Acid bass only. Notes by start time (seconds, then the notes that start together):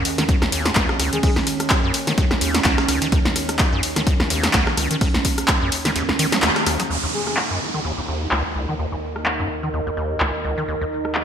0.18 D#3
0.29 D#2
0.42 D#2
0.52 D#2
0.65 E2
0.76 C#2
0.99 C#2
1.13 D#3
1.23 D#2
1.36 D#2
1.84 F#2
2.07 D#3
2.18 D#2
2.31 D#2
2.41 D#2
2.54 E2
2.65 C#2
2.89 C#2
3.02 D#3
3.12 D#2
3.25 D#2
3.73 F#2
3.96 D#3
4.07 D#2
4.20 D#2
4.30 D#2
4.44 E2
4.54 C#2
4.78 C#2
4.91 D#3
5.01 D#2
5.14 D#2
5.62 F#2
5.85 D#3
5.96 D#2
6.09 D#2
6.19 D#3
6.33 F#3
6.43 D#2
6.66 D#2
6.80 F#3
6.90 D#2
7.03 D#2
7.51 F#2
7.74 D#3
7.85 D#2
7.98 D#2
8.08 D#2
8.21 E2
8.32 C#2
8.56 C#2
8.69 D#3
8.79 D#2
8.92 D#2
9.40 F#2
9.63 D#3
9.74 D#2
9.87 D#2
9.97 D#2
10.10 E2
10.21 C#2
10.44 C#2
10.58 D#3
10.68 D#2
10.81 D#2